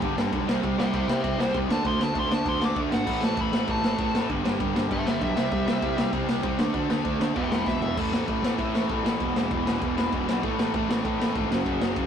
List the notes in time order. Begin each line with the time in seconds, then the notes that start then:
Already playing: G5
0.02 G1 G2 D3 G3, kick, ride
0.17 G1 G2 D3 G3, snare
0.31 B1 G2 D3 G3, kick, ride
0.47 C2 C3 G3 C4, snare
0.62 C2 C3 G3 C4, kick, ride
0.78 C2 C3 G3 C4 E5 G5, snare
0.93 C2 C3 G3 C4 E5 G5, kick, ride
1.07 C2 C3 G3 C4 C5 E5, snare
1.22 C2 C3 G3 C4 C5 E5, kick, ride
1.37 C2 C3 G3 C4 C5, snare
1.53 C2 C3 G3 C4, kick, ride
1.68 D2 D3 A3 D4, snare
1.72 A5
1.83 D2 D3 A3 D4, kick, ride
1.87 C6
1.98 D2 D3 A3 D4, snare
2.03 A5
2.14 D2 D3 A3 D4, kick, ride
2.19 C6
2.29 D2 D3 A3 D4, snare
2.34 A5
2.44 D2 D3 A3 D4, kick, ride
2.49 C6
2.60 D2 D3 A3 D4, snare
2.65 D6
2.76 D2 D3 A3 D4, kick, ride
2.90 G#1 D3 A3 D4 F#5, snare
3.06 A1 A2 E3 A3, kick, crash
3.21 A1 A2 E3 A3, snare
3.25 A5
3.37 A1 A2 E3 A3, kick, ride
3.41 B5
3.52 A1 A2 E3 A3, snare
3.67 A1 A2 E3 A3 A5, kick, ride
3.83 A1 A2 E3 A3, snare
3.98 A1 A2 E3 A3, kick, ride
4.14 A1 A2 E3 A3, snare
4.28 G1 G2 D3 G3, kick, ride
4.43 G1 G2 D3 G3, snare
4.59 G1 G2 D3 G3, kick, ride
4.73 G1 G2 D3 G3, snare
4.89 G1 G2 D3 G3 E5 A5, kick, ride
5.05 G1 G2 D3 G3 E5 G5, snare
5.20 B1 G2 D3 G3 E5, kick, ride
5.36 C2 C3 G3 C4, snare
5.51 C2 C3 G3 C4, kick, ride
5.66 C2 C3 G3 C4, snare
5.82 C2 C3 G3 C4, kick, ride
5.96 C2 C3 G3 C4, snare
6.12 C2 C3 G3 C4, kick, ride
6.27 C2 C3 G3 C4, snare
6.43 C2 C3 G3 C4, kick, ride
6.58 D2 D3 A3 D4, snare
6.74 D2 D3 A3 D4, kick, ride
6.90 D2 D3 A3 D4, snare
7.05 D2 D3 A3 D4, kick, ride
7.19 D2 D3 A3 D4, snare
7.35 E1 E2 B2 E3 E5 G5, kick, ride
7.50 E1 E2 B2 E3 E5 G5, snare
7.66 E1 E2 B2 E3 E5, kick, snare
7.80 E1 E2 B2 E3, floor tom
7.97 A1 A2 E3 A3, kick, crash
8.11 A1 A2 E3 A3, snare
8.27 A1 A2 E3 A3, kick, ride
8.42 A1 A2 E3 A3, snare
8.59 A2 E3 A3, kick, ride
8.74 A2 E3 A3, snare
8.89 A1 A2 E3 A3, kick, ride
9.03 A1 A2 E3 A3, snare
9.20 E1 E2 B2 E3, kick, ride
9.34 E1 E2 B2 E3, snare
9.51 E1 E2 B2 E3, kick, ride
9.67 E2 B2 E3, snare
9.81 E1 E2 B2 E3, kick, ride
9.96 E2 B2 E3, snare
10.12 E1 E2 B2 E3, kick, ride
10.28 B1 E2 B2 E3, snare
10.43 A1 A2 E3 A3, kick, ride
10.58 A1 A2 E3 A3, snare
10.74 A1 A2 E3 A3, kick, ride
10.89 A1 A2 E3 A3, snare
11.04 A2 E3 A3, kick, ride
11.19 A2 E3 A3, snare
11.35 G#1 A2 E3 A3, kick, ride
11.50 F#1 F#2 C#3 F#3, snare
11.65 F#1 F#2 C#3 F#3, kick, ride
11.80 F#1 F#2 C#3 F#3, snare
11.96 F#1 F#2 C#3 F#3, kick, ride